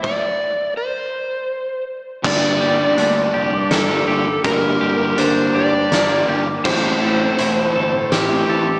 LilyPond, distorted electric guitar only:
\new Staff \with { instrumentName = "Distorted electric guitar" } { \time 3/4 \key g \dorian \tempo 4 = 82 r2. | <g, d g bes d'>8 <d g bes d'>16 <g bes d'>16 <g, d g bes d'>4~ <g, d g bes d'>16 <g bes d'>16 <d g bes d'>8 | <g, d g bes d'>8 <d g bes d'>16 <g bes d'>16 <g, d g bes d'>4~ <g, d g bes d'>16 <g bes d'>16 <d g bes d'>8 | <a, e a c' e'>8 <e a c' e'>16 <a c' e'>16 <a, e a c' e'>4~ <a, e a c' e'>16 <a c' e'>16 <e a c' e'>8 | }